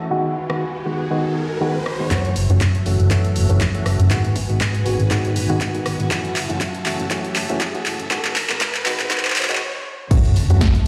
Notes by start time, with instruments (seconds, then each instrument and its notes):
Already playing: string machine F#4, riser
0.10 reed electric piano D#3 G#3 B3 F#4, string machine B4 G#5
0.49 reed electric piano D#3 G#3 B3 F#4, cross-stick
0.86 reed electric piano D#3 G#3 B3 F#4
1.11 reed electric piano D#3 G#3 B3 F#4
1.61 reed electric piano D#3 G#3 B3 F#4
1.86 cross-stick
2.00 reed electric piano D#3 G#3 B3 F#4
2.11 fingered electric bass F#2, reed electric piano E3 A3 C#4 F#4, string machine F#4 E5 A5, kick, clap, closed hi-hat, riser
2.25 closed hi-hat
2.36 fingered electric bass F#1, open hi-hat
2.50 fingered electric bass F#1, reed electric piano E3 A3 C#4 F#4, closed hi-hat
2.61 fingered electric bass F#2, kick, clap, closed hi-hat
2.75 closed hi-hat
2.86 fingered electric bass F#1, reed electric piano E3 A3 C#4 F#4, open hi-hat
3.00 fingered electric bass F#1, closed hi-hat
3.11 fingered electric bass F#2, reed electric piano E3 A3 C#4 F#4, kick, clap, closed hi-hat
3.25 closed hi-hat
3.36 fingered electric bass F#1, open hi-hat
3.49 fingered electric bass F#1, reed electric piano E3 A3 C#4 F#4, closed hi-hat
3.61 fingered electric bass F#2, kick, clap, closed hi-hat
3.74 reed electric piano E3 A3 C#4 F#4, closed hi-hat
3.86 fingered electric bass F#1, cross-stick, open hi-hat
3.99 fingered electric bass F#1, closed hi-hat
4.10 reed electric piano D#3 G#3 B3 F#4, string machine B4 G#5, kick, clap, closed hi-hat
4.25 closed hi-hat
4.36 fingered electric bass G#1, kick, open hi-hat
4.49 fingered electric bass G#1, reed electric piano D#3 G#3 B3 F#4, closed hi-hat
4.61 fingered electric bass G#2, kick, clap, closed hi-hat
4.75 closed hi-hat
4.85 fingered electric bass G#1, reed electric piano D#3 G#3 B3 F#4, open hi-hat
5.00 fingered electric bass G#1, closed hi-hat
5.10 fingered electric bass G#2, reed electric piano D#3 G#3 B3 F#4, kick, clap, closed hi-hat
5.25 closed hi-hat
5.36 fingered electric bass G#1, open hi-hat
5.49 fingered electric bass G#1, reed electric piano D#3 G#3 B3 F#4, closed hi-hat
5.61 fingered electric bass G#2, kick, clap, closed hi-hat
5.74 reed electric piano D#3 G#3 B3 F#4, closed hi-hat
5.86 fingered electric bass G#1, cross-stick, open hi-hat
6.00 fingered electric bass G#1, closed hi-hat
6.10 fingered electric bass F#2, reed electric piano E3 A3 C#4 F#4, string machine E5 A5, kick, clap, closed hi-hat
6.25 closed hi-hat
6.36 fingered electric bass F#1, clap, open hi-hat
6.49 fingered electric bass F#1, reed electric piano E3 A3 C#4 F#4, closed hi-hat
6.61 fingered electric bass F#2, kick, clap, closed hi-hat
6.75 closed hi-hat
6.86 fingered electric bass F#1, reed electric piano E3 A3 C#4 F#4, clap, open hi-hat
7.00 fingered electric bass F#1, closed hi-hat
7.10 fingered electric bass F#2, reed electric piano E3 A3 C#4 F#4, kick, clap, closed hi-hat
7.25 closed hi-hat
7.36 fingered electric bass F#1, clap, open hi-hat
7.49 fingered electric bass F#1, reed electric piano E3 A3 C#4 F#4, closed hi-hat
7.61 fingered electric bass F#2, kick, clap, closed hi-hat
7.74 reed electric piano E3 A3 C#4 F#4, closed hi-hat
7.86 fingered electric bass F#1, clap, open hi-hat
8.00 fingered electric bass F#1, closed hi-hat
8.11 fingered electric bass G#2, reed electric piano D#3 G#3 B3 F#4, string machine B4 G#5, kick, clap, closed hi-hat
8.25 clap, closed hi-hat
8.36 fingered electric bass G#1, kick, clap, open hi-hat
8.49 fingered electric bass G#1, reed electric piano D#3 G#3 B3 F#4, clap
8.61 fingered electric bass G#2, kick, clap, closed hi-hat
8.75 clap, closed hi-hat
8.85 fingered electric bass G#1, reed electric piano D#3 G#3 B3 F#4, clap, open hi-hat
9.00 fingered electric bass G#1, clap, closed hi-hat
9.10 fingered electric bass G#2, reed electric piano D#3 G#3 B3 F#4, kick, clap, closed hi-hat
9.18 clap
9.25 muted fingered electric bass stroke, clap, closed hi-hat
9.30 clap
9.36 fingered electric bass G#1, clap, open hi-hat
9.43 clap
9.49 fingered electric bass G#1, reed electric piano D#3 G#3 B3 F#4, clap, closed hi-hat
9.55 clap
10.10 fingered electric bass F#2, reed electric piano E3 A3 C#4 F#4, string machine F#4 E5 A5, kick, closed hi-hat, crash, tambourine, sub drop
10.24 closed hi-hat, tambourine
10.36 fingered electric bass F#1, open hi-hat, tambourine, high conga
10.49 fingered electric bass F#1, reed electric piano E3 A3 C#4 F#4, closed hi-hat, tambourine, low conga
10.61 fingered electric bass F#2, kick, snare, closed hi-hat, tambourine
10.74 closed hi-hat, tambourine, high conga, low conga